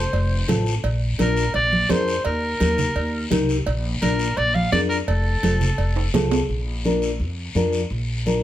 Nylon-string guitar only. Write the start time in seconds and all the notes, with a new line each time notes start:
0.48 C4 F4 A4
1.19 D4 F4 A#4
1.89 D4 F4 A#4
2.60 D#4 G4 A#4
3.30 D#4 G4 A#4
4.02 D4 F4 A#4
4.73 D4 F4 A#4
5.43 C4 F4 A4
6.14 C4 F4 A4
6.85 D4 F4 A#4
7.55 D4 F4 A#4
8.26 D4 F4 A#4